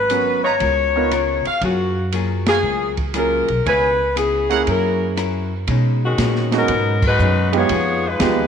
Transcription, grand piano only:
0.11 0.41 B3 soft
0.11 0.41 C#4 soft
0.11 0.41 F#4 soft
0.11 0.41 A#4 medium
0.96 1.10 B3 medium
0.96 1.11 D#4 medium
0.96 1.11 F4 medium
0.96 1.11 A#4 medium
3.15 3.45 A#3 soft
3.15 3.46 C#4 soft
3.15 3.46 F4 soft
3.15 3.46 G#4 medium
4.49 5.14 A#3 medium
4.49 5.14 C#4 medium
4.49 5.14 E4 medium
4.49 5.14 G#4 medium
6.52 6.68 G#3 medium
6.52 6.67 B3 medium
6.52 6.68 C#4 medium
6.52 6.68 D#4 medium
6.52 6.68 F#4 medium
7.52 7.68 G#3 medium
7.52 7.68 B3 medium
7.52 7.68 D#4 medium
7.52 7.68 F4 medium
7.52 7.69 G4 medium
8.19 8.47 G#3 medium
8.19 8.47 B3 medium
8.19 8.47 D#4 medium
8.19 8.47 F4 medium
8.19 8.47 G4 medium

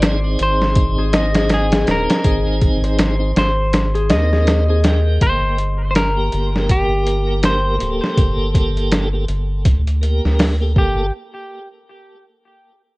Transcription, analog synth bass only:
0.00 0.37 G#1 medium
0.41 1.85 G#1 medium
1.88 2.07 D#1 loud
2.25 3.33 G#1 medium
3.37 4.12 G#1 medium
4.11 5.18 D#2 medium
5.22 6.30 G1 medium
6.34 7.78 G1 loud
7.82 8.00 D1 medium
8.18 9.26 G1 loud
9.29 9.67 G1 loud
9.66 10.20 D2 medium
10.25 10.76 D2 medium
10.77 11.11 G1 medium

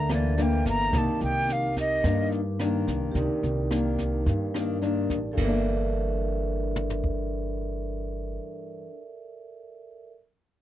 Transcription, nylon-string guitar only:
0.00 0.90 D3 soft
0.10 0.33 E3 medium
0.10 0.33 A#3 soft
0.10 0.34 D4 medium
0.38 0.89 E3 medium
0.38 0.89 A#3 medium
0.38 0.89 D4 medium
0.93 2.01 C3 soft
0.93 1.68 D#3 soft
0.93 1.68 A#3 soft
0.93 1.68 D4 medium
2.04 3.12 G2 soft
2.04 2.40 D#3 medium
2.04 2.40 A#3 medium
2.04 2.40 D4 medium
2.60 3.66 D#3 medium
2.60 3.66 A#3 soft
2.60 3.67 D4 medium
3.15 4.24 C3 soft
3.70 4.49 D#3 soft
3.70 4.50 A#3 soft
3.70 4.50 D4 medium
4.26 5.32 G2 soft
4.54 4.78 D#3 soft
4.54 4.78 A#3 soft
4.54 4.78 D4 medium
4.82 5.18 D#3 soft
4.82 5.18 A#3 soft
4.82 5.18 D4 medium
5.33 8.83 G2 soft
5.39 8.89 E3 medium
5.44 8.94 A#3 medium
5.48 8.98 D4 medium

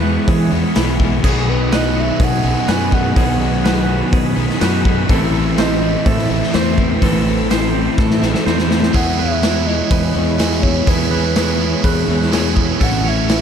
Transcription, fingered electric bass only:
0.00 0.17 E2 loud
0.28 0.49 E3 loud
0.52 0.63 E2 loud
0.77 1.19 B1 medium
1.24 2.10 B1 loud
2.20 2.41 B2 medium
2.44 2.55 B1 loud
2.69 3.11 F#2 medium
3.16 4.02 B1 loud
4.13 4.34 B2 loud
4.37 4.47 B1 medium
4.62 5.04 F#2 medium
5.10 5.95 A1 loud
6.06 6.27 A2 loud
6.31 6.41 A1 loud
6.55 6.97 E2 medium
7.02 7.88 A1 loud
7.98 8.20 A2 loud
8.23 8.33 A1 medium
8.47 8.89 E2 medium
8.95 9.80 E2 loud
9.91 10.13 E2 medium
10.16 10.80 E2 medium
10.87 11.73 E2 loud
11.84 12.06 E2 loud
12.08 12.73 E2 medium
12.81 13.41 A1 loud

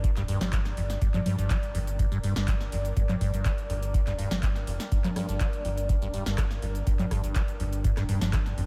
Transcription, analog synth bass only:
0.00 0.13 G1 medium
0.17 0.36 D1 medium
0.41 0.74 G1 medium
0.77 0.97 G1 medium
1.02 1.12 G1 medium
1.39 1.48 G1 medium
1.75 2.08 G1 medium
2.12 2.31 D1 medium
2.36 2.69 G1 medium
2.72 2.92 G1 medium
2.97 3.07 G1 medium
3.34 3.43 G1 medium
3.70 4.03 G1 medium
4.07 4.26 D1 medium
4.31 4.64 G1 medium
4.68 4.78 F1 loud
4.92 5.02 G1 loud
5.29 5.38 G1 medium
5.65 5.98 G1 medium
6.02 6.22 D1 medium
6.26 6.59 G1 medium
6.62 6.82 G1 loud
6.87 6.97 G1 medium
7.24 7.33 G1 medium
7.60 7.93 G1 medium
7.97 8.17 D1 medium
8.21 8.54 G1 medium
8.58 8.66 G1 medium

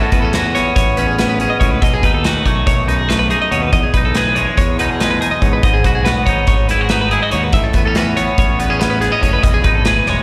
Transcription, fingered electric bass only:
0.13 0.65 E2 medium
0.76 1.45 A1 medium
1.61 1.78 C#2 medium
1.83 2.00 B1 medium
2.04 2.38 D#2 medium
2.46 2.63 B1 medium
2.67 3.36 B1 medium
3.51 3.69 D#2 medium
3.74 3.82 E2 loud
3.94 4.46 B1 medium
4.58 5.27 E2 medium
5.42 5.59 G#2 medium
5.64 5.81 G#1 medium
5.85 6.19 B1 medium
6.27 6.44 G#1 medium
6.48 7.17 G#1 medium
7.33 7.50 D#2 medium
7.54 7.63 A1 loud
7.74 8.26 E2 medium
8.38 9.07 A1 medium
9.23 9.40 F#1 medium
9.44 9.62 E1 medium
9.65 10.00 G#1 medium
10.07 10.23 E1 medium

